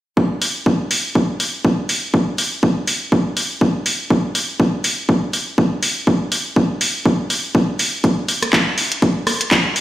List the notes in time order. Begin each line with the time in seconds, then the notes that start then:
0.17 kick
0.42 open hi-hat
0.66 kick
0.91 open hi-hat
1.15 kick
1.40 open hi-hat
1.65 kick
1.89 open hi-hat
2.14 kick
2.38 open hi-hat
2.63 kick
2.87 open hi-hat
3.12 kick
3.37 open hi-hat
3.61 kick
3.86 open hi-hat
4.10 kick
4.35 open hi-hat
4.60 kick
4.84 open hi-hat
5.09 kick
5.33 open hi-hat
5.58 kick
5.83 open hi-hat
6.07 kick
6.32 open hi-hat
6.56 kick
6.81 open hi-hat
7.06 kick
7.30 open hi-hat
7.55 kick
7.79 open hi-hat
8.04 kick, closed hi-hat
8.28 open hi-hat
8.43 cross-stick, closed hi-hat
8.53 kick, clap, closed hi-hat
8.78 open hi-hat
8.92 closed hi-hat
9.02 kick, closed hi-hat
9.27 cross-stick, open hi-hat
9.41 closed hi-hat
9.51 kick, clap, closed hi-hat
9.76 open hi-hat